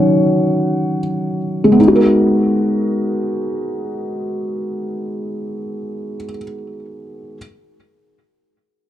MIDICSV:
0, 0, Header, 1, 2, 480
1, 0, Start_track
1, 0, Key_signature, 5, "minor"
1, 0, Tempo, 500000
1, 8538, End_track
2, 0, Start_track
2, 0, Title_t, "Felt piano"
2, 0, Program_c, 0, 0
2, 0, Control_c, 0, 64, 127
2, 0, Note_on_c, 0, 51, 47
2, 0, Note_on_c, 0, 54, 45
2, 0, Note_on_c, 0, 61, 53
2, 0, Note_on_c, 0, 66, 62
2, 0, Note_on_c, 0, 78, 84
2, 941, Note_off_c, 0, 78, 0
2, 950, Note_off_c, 0, 66, 0
2, 1576, Note_on_c, 0, 56, 72
2, 1651, Note_on_c, 0, 59, 68
2, 1681, Note_off_c, 0, 51, 0
2, 1684, Note_off_c, 0, 54, 0
2, 1687, Note_off_c, 0, 61, 0
2, 1726, Control_c, 0, 64, 0
2, 1727, Note_on_c, 0, 63, 68
2, 1804, Note_on_c, 0, 66, 64
2, 1878, Note_on_c, 0, 70, 81
2, 1902, Control_c, 0, 64, 127
2, 5900, Note_off_c, 0, 56, 0
2, 5975, Note_off_c, 0, 59, 0
2, 6051, Note_off_c, 0, 63, 0
2, 6115, Note_off_c, 0, 66, 0
2, 6152, Note_off_c, 0, 70, 0
2, 7082, Control_c, 0, 64, 0
2, 8538, End_track
0, 0, End_of_file